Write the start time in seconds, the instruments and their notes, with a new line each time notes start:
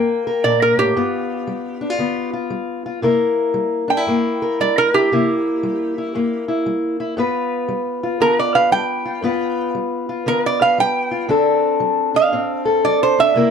Already playing: steel-string acoustic guitar G2 A#3 A#4, resonator guitar played with a steel bar G5
0.27 steel-string acoustic guitar A#4
0.44 steel-string acoustic guitar A#2, resonator guitar played with a steel bar D5
0.62 resonator guitar played with a steel bar A#4
0.77 steel-string acoustic guitar A2, resonator guitar played with a steel bar G4
0.96 steel-string acoustic guitar G2 B3 F4
1.47 steel-string acoustic guitar G3
1.81 steel-string acoustic guitar D4
1.90 steel-string acoustic guitar F4
1.99 steel-string acoustic guitar D3 B3
2.33 steel-string acoustic guitar F4
2.50 steel-string acoustic guitar G3
2.86 steel-string acoustic guitar F4
3.02 steel-string acoustic guitar C3 A#3 E4 A#4
3.54 steel-string acoustic guitar G3
3.88 steel-string acoustic guitar D4, resonator guitar played with a steel bar G5
3.97 steel-string acoustic guitar E4
4.07 steel-string acoustic guitar G2 A#3
4.42 steel-string acoustic guitar A#4
4.60 steel-string acoustic guitar G3, resonator guitar played with a steel bar D5
4.78 resonator guitar played with a steel bar A#4
4.94 steel-string acoustic guitar E4, resonator guitar played with a steel bar G4
5.12 steel-string acoustic guitar C3 A#3 E4
5.63 steel-string acoustic guitar G3
5.98 steel-string acoustic guitar E4
6.15 steel-string acoustic guitar G2 A#3
6.48 steel-string acoustic guitar E4
6.66 steel-string acoustic guitar G3
7.00 steel-string acoustic guitar E4
7.17 steel-string acoustic guitar G2 B3 F4 B4
7.69 steel-string acoustic guitar G3
8.03 steel-string acoustic guitar F4
8.20 steel-string acoustic guitar D3 B3, resonator guitar played with a steel bar A#4
8.39 resonator guitar played with a steel bar D5
8.55 steel-string acoustic guitar B4, resonator guitar played with a steel bar F5
8.72 steel-string acoustic guitar G3, resonator guitar played with a steel bar G5
9.05 steel-string acoustic guitar F4
9.22 steel-string acoustic guitar G2 B3 F4 B4
9.75 steel-string acoustic guitar G3
10.09 steel-string acoustic guitar F4
10.26 steel-string acoustic guitar D3 B3, resonator guitar played with a steel bar A#4
10.46 resonator guitar played with a steel bar D5
10.61 steel-string acoustic guitar B4, resonator guitar played with a steel bar F5
10.78 steel-string acoustic guitar G3, resonator guitar played with a steel bar G5
11.11 steel-string acoustic guitar F4
11.29 steel-string acoustic guitar D3 C4 D4 A4
11.80 steel-string acoustic guitar F#3
12.14 steel-string acoustic guitar D4, resonator guitar played with a steel bar F5
12.32 steel-string acoustic guitar A2 C4
12.65 steel-string acoustic guitar A4
12.84 steel-string acoustic guitar F#3, resonator guitar played with a steel bar D5
13.03 resonator guitar played with a steel bar C5
13.18 steel-string acoustic guitar D4, resonator guitar played with a steel bar E5
13.35 steel-string acoustic guitar C3 A#3 E4 A#4